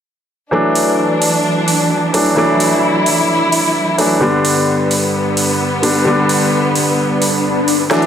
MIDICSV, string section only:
0, 0, Header, 1, 2, 480
1, 0, Start_track
1, 0, Key_signature, 2, "major"
1, 0, Tempo, 461538
1, 545, Time_signature, 4, 2, 24, 8
1, 8388, End_track
2, 0, Start_track
2, 0, Title_t, "String section"
2, 0, Program_c, 0, 48
2, 545, Note_on_c, 0, 52, 68
2, 545, Note_on_c, 0, 54, 62
2, 545, Note_on_c, 0, 62, 73
2, 2446, Note_off_c, 0, 62, 0
2, 2465, Note_on_c, 0, 64, 75
2, 4347, Note_off_c, 0, 52, 0
2, 4347, Note_off_c, 0, 54, 0
2, 4366, Note_off_c, 0, 64, 0
2, 4383, Note_on_c, 0, 43, 69
2, 4384, Note_on_c, 0, 50, 62
2, 4384, Note_on_c, 0, 59, 77
2, 8186, Note_off_c, 0, 43, 0
2, 8186, Note_off_c, 0, 50, 0
2, 8186, Note_off_c, 0, 59, 0
2, 8225, Note_on_c, 0, 52, 71
2, 8225, Note_on_c, 0, 62, 79
2, 8226, Note_on_c, 0, 54, 66
2, 8388, Note_off_c, 0, 52, 0
2, 8388, Note_off_c, 0, 54, 0
2, 8388, Note_off_c, 0, 62, 0
2, 8388, End_track
0, 0, End_of_file